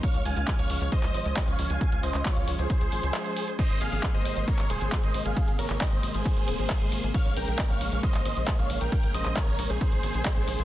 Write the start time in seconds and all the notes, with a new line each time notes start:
0.03 F3 G#3 C#4 C#5 F5, kick, closed hi-hat
0.14 C#2, closed hi-hat
0.25 C#2 F5 G#5, open hi-hat
0.37 C#2, closed hi-hat
0.48 kick, clap, closed hi-hat
0.59 C#2 C#5 F5, closed hi-hat
0.70 C#2, open hi-hat
0.81 C#2, closed hi-hat
0.92 C5 D#5, kick, closed hi-hat
1.03 C#2, clap, closed hi-hat
1.14 G#1 C5 D#5, open hi-hat
1.25 C#2, closed hi-hat
1.37 kick, clap, closed hi-hat
1.48 C#2 C#5 F5, closed hi-hat
1.59 C#2, open hi-hat
1.70 C#2 F5 G#5, closed hi-hat
1.81 kick, closed hi-hat
1.92 C#2, closed hi-hat
2.03 C#2 C5 D#5, open hi-hat
2.14 C#2, clap, closed hi-hat
2.25 F4 C#5, kick, clap, closed hi-hat
2.37 C#2, closed hi-hat
2.48 C#2, open hi-hat
2.59 C#2 G#4 C5, closed hi-hat
2.70 kick, closed hi-hat
2.81 C#2, closed hi-hat
2.92 G#1, open hi-hat
3.03 C#2, closed hi-hat
3.14 clap, closed hi-hat
3.25 closed hi-hat
3.37 open hi-hat
3.48 closed hi-hat
3.59 C3 A#3 C5 D#5, kick, closed hi-hat, crash, ride
3.70 G#1, closed hi-hat
3.81 G#1 G#4 F5, open hi-hat, ride
3.92 G#1, closed hi-hat
4.03 kick, clap, closed hi-hat, ride
4.14 G#1 C5 D#5, closed hi-hat
4.25 G#1, open hi-hat, ride
4.37 G#1, closed hi-hat
4.48 A#4 C#5, kick, closed hi-hat, ride
4.59 G#1, clap, closed hi-hat
4.70 D#1 G#4 C5, open hi-hat, ride
4.81 G#1, closed hi-hat
4.92 kick, clap, closed hi-hat, ride
5.03 G#1 C5 D#5, closed hi-hat
5.14 G#1, open hi-hat, ride
5.25 G#1 G#4 F5, closed hi-hat
5.37 kick, closed hi-hat, ride
5.48 G#1, closed hi-hat
5.59 G#1 A#4 C#5, open hi-hat, ride
5.70 G#1, clap, closed hi-hat
5.81 C5 D#5, kick, clap, closed hi-hat, ride
5.92 G#1, closed hi-hat
6.03 G#1, open hi-hat, ride
6.14 G#1 G#4 C5, closed hi-hat
6.26 kick, closed hi-hat, ride
6.37 G#1, closed hi-hat
6.48 D#1, open hi-hat, ride
6.59 G#1, closed hi-hat
6.70 kick, clap, closed hi-hat, ride
6.81 G#1, closed hi-hat
6.92 G#1, open hi-hat, ride
7.03 G#1, closed hi-hat
7.14 C#3 C#5 F5, kick, closed hi-hat, ride
7.25 A#1, closed hi-hat
7.37 A#1 A#4 G5, open hi-hat, ride
7.48 A#1, closed hi-hat
7.59 kick, clap, closed hi-hat, ride
7.70 A#1 C#5 F5, closed hi-hat
7.81 A#1, open hi-hat, ride
7.92 A#1, closed hi-hat
8.03 C5 D#5, kick, closed hi-hat, ride
8.14 A#1, clap, closed hi-hat
8.25 G#1 C5 D#5, open hi-hat, ride
8.37 A#1, closed hi-hat
8.48 kick, clap, closed hi-hat, ride
8.59 A#1 C#5 F5, closed hi-hat
8.70 A#1, open hi-hat, ride
8.81 A#1 A#4 G5, closed hi-hat
8.92 kick, closed hi-hat, ride
9.03 A#1, closed hi-hat
9.14 A#1 C5 D#5, open hi-hat, ride
9.26 A#1, clap, closed hi-hat
9.37 A#4 C#5, kick, clap, closed hi-hat, ride
9.48 A#1, closed hi-hat
9.59 A#1, open hi-hat, ride
9.70 A#1 G#4 C5, closed hi-hat
9.81 kick, closed hi-hat, ride
9.92 A#1, closed hi-hat
10.03 G#1, open hi-hat, ride
10.14 A#1, closed hi-hat
10.25 kick, clap, closed hi-hat, ride
10.37 A#1, closed hi-hat
10.48 A#1, open hi-hat, ride
10.59 A#1, closed hi-hat